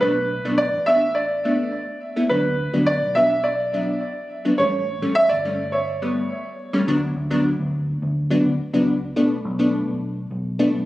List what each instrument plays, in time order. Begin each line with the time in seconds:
0.01 fingered electric bass B1, synth stab A3 B3 D4, grand piano B4
0.45 fingered electric bass B1, synth stab A3 B3 D4
0.58 grand piano D5
0.74 fingered electric bass A1
0.86 synth stab A3 B3 D4, grand piano E5
1.15 grand piano D5
1.45 synth stab A3 B3 D4
2.16 synth stab A3 B3 E4
2.29 fingered electric bass D2, synth stab F#3 B3 D4, grand piano B4
2.73 fingered electric bass D2, synth stab F#3 B3 D4
2.86 grand piano D5
3.02 fingered electric bass B1
3.15 synth stab F#3 B3 D4, grand piano E5
3.44 grand piano D5
3.73 synth stab F#3 B3 D4
4.45 synth stab F#3 B3 D4
4.58 fingered electric bass A1, synth stab G3 A3 C#4, grand piano C#5
5.02 fingered electric bass A1, synth stab G3 A3 C#4
5.15 grand piano E5
5.29 fingered electric bass G1, grand piano D5
5.45 synth stab G3 A3 C#4
5.72 grand piano C#5
6.02 synth stab G3 A3 B3
6.73 synth stab G3 A3 C#4
6.88 fingered electric bass D2, synth stab F#3 B3 D4
7.16 fingered electric bass D2
7.31 synth stab F#3 B3 D4
7.59 fingered electric bass D2
8.02 fingered electric bass D2
8.30 synth stab F#3 B3 D4
8.45 fingered electric bass D2
8.73 fingered electric bass C#2, synth stab F#3 B3 D4
9.16 fingered electric bass B1, synth stab A3 B3 D4
9.45 fingered electric bass B1
9.59 synth stab A3 B3 D4
9.88 fingered electric bass B1
10.31 fingered electric bass B1
10.59 synth stab A3 B3 D4
10.74 fingered electric bass B1